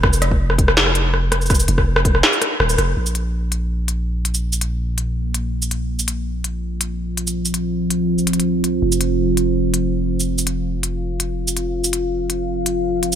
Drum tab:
HH |------------x-----------------------x-----------------------x-----------------------x-----------|------------x-----------------------x-----------------------x-----------------------x-----------|------------x-----------------------x-----------------------x-----------------------x-----------|------------x-----------------------x-----------------------x-----------------------x-----------|
SH |------x-----------------------------------------------------------------------------------x--x--|x--x--x-----------------------------------------------x-----------------------x-----------------|------x-----------------------------------------------------------------------------------x-----|------x-----------------------------------------------------------------------x-----------------|
SD |r-----------r-----------------r-----------r-----o-----r-----------------r-----------r-----------|r-----------------r-----------r-----------r-----o-----------r-----------r-----------r-----------|------------------------------------------------------------------------------------------------|------------------------------------------------------------------------------------------------|
BD |o-----------------o-----------------o-----------------------------------------------------------|o-----------------o-----------------o-----------------------------------------------------------|------------------------------------------------------------------------------------------------|------------------------------------------------------------------------------------------------|

HH |------------x-----------------------x-----------------------x-----------------------x-----------|------------x-----------------------x-----------------------x---x---x---------------x-----------|------------x-----------------------x-----------------------x-----------------------------------|------------x-----------------------x-----------------------x-----------------------x-----------|
SH |------x-----------------------------------------------------------------------------------x-----|------x-----------------------------------------------x-----------------------------------------|------x-----------------------------------------------------------------------------------x-----|------x-----------------------------------------------------------------------x-----------------|
SD |------------------------------------------------------------------------------------------------|------------------------------------------------------------------------------------------------|------------------------------------------------------------------------------------------------|------------------------------------------------------------------------------------------------|
BD |------------------------------------------------------------------------------------------------|------------------------------------------------------------------------------------------------|------------------------------------------------------------------------------------------------|------------------------------------------------------------------------------------------------|

HH |------------x-----------------------x-----------------------x-----------------------x-----------|
SH |------x-----------------------------------------------------------------------------------------|
SD |------------------------------------------------------------------------------------------------|
BD |------------------------------------------------------------------------------------------------|